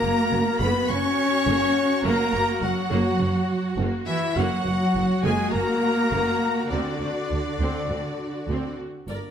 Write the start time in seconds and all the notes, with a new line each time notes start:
Already playing: A#3 F#4 A#4 A#5
0.03 F#1 A#3
0.32 F#1 F#3
0.60 F#1 A#3 B3 B4 B5
0.89 F#1 A#3 C#4 C#5 C#6
1.47 F#1 A#3
2.05 F#1 A#3 A#4 A#5
2.34 F#1 A#3
2.62 F#1 F#3 F#4 F#5
2.91 F#1 A#3
3.20 F#1 A#3
3.78 F#1 A#3
4.07 E3 E4 E5
4.36 F#1 F#3 A#3 F#4 F#5
4.65 F#1 A#3
4.95 F#1 F#3
5.23 F#1 G#3 A#3 G#4 G#5
5.52 F#1 A#3 A#4 A#5
6.12 F#1 A#3
6.71 D2 D3 C4 D4 D5
7.00 D2 C4
7.31 D2 A3
7.59 D2 C4
7.89 D2 C4
8.48 D2 C4
9.07 G1 G2 A#3 D4 A#4 D5, triangle